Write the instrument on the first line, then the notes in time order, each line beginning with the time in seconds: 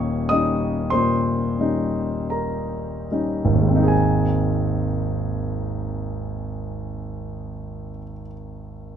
grand piano
Already playing: D#1 D#2 G3 C#4 D#4 C#5 D#5 C#6 D#6
0.29 G3 C#4 D#4 D#5 D#6
0.90 A#2 C5 C6
1.60 G3 C#4 D#4
2.30 A#4 A#5
3.11 G3 C#4 D#4
3.45 G#1
3.53 D#2
3.60 G#3
3.68 C4
3.76 D#4
3.83 G#4
3.88 G#5